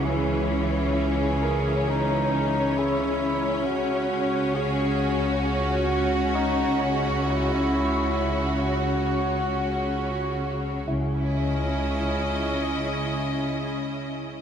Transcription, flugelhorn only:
X:1
M:4/4
L:1/8
Q:1/4=67
K:C#dor
V:1 name="Flugelhorn"
G z G2 D2 E2 | F2 G z F2 D G | E3 F4 z | C8 |]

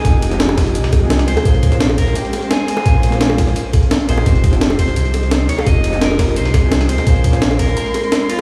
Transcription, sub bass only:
X:1
M:4/4
L:1/8
Q:1/4=171
K:Fm
V:1 name="Sub bass" clef=bass
F,,,4 C,,3 z | B,,,4 z4 | B,,,4 z3 B,,, | F,,,4 C,,3 z |
F,,,4 C,,3 z | B,,,4 z4 |]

